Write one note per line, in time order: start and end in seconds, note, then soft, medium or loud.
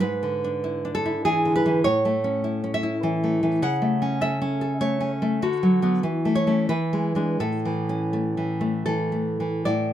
0.00 1.80 G#2 soft
0.00 0.90 B4 medium
0.23 1.15 D3 soft
0.44 0.84 D4 soft
0.64 1.04 E4 soft
0.85 1.75 D4 soft
0.95 1.24 A4 medium
1.06 1.85 E4 soft
1.25 1.64 E3 soft
1.25 1.54 G#4 medium
1.45 1.85 D3 soft
1.56 1.84 B4 medium
1.66 1.85 E3 soft
1.84 3.58 A2 medium
1.84 2.70 C#5 medium
2.05 2.94 A3 soft
2.24 2.63 C#4 soft
2.44 2.82 E4 soft
2.64 3.52 C#4 soft
2.74 3.59 E5 medium
2.83 3.62 E4 soft
3.03 3.42 E3 soft
3.24 3.63 A3 soft
3.43 3.62 E3 soft
3.62 5.39 C#3 medium
3.62 4.20 F#5 medium
3.82 4.72 A3 soft
4.02 4.40 C#4 soft
4.21 4.60 A4 soft
4.21 4.80 E5 medium
4.42 4.99 C#4 medium
4.61 5.43 A4 medium
4.81 5.21 A3 soft
4.81 5.11 C#5 medium
5.01 5.42 C#4 soft
5.22 5.43 A3 soft
5.42 6.02 D3 medium
5.42 6.32 F#4 medium
5.63 5.81 F#3 soft
5.82 6.01 F#3 soft
5.82 6.02 B3 medium
6.03 6.67 E3 soft
6.25 6.46 A3 soft
6.35 6.68 C#5 medium
6.47 6.67 A3 soft
6.47 6.68 C#4 soft
6.69 7.39 E3 medium
6.69 7.38 B4 medium
6.93 7.14 G#3 soft
7.15 7.38 G#3 soft
7.15 7.38 D4 soft
7.40 9.62 A2 medium
7.40 8.82 A4 medium
7.65 8.36 E3 soft
7.89 8.99 C#4 soft
8.13 8.59 A3 soft
8.37 8.85 E3 soft
8.61 9.11 A3 soft
8.86 9.39 E3 soft
8.86 9.63 A4 medium
9.12 9.66 A3 soft
9.40 9.66 E3 soft
9.65 9.93 A2 medium
9.65 9.93 D5 medium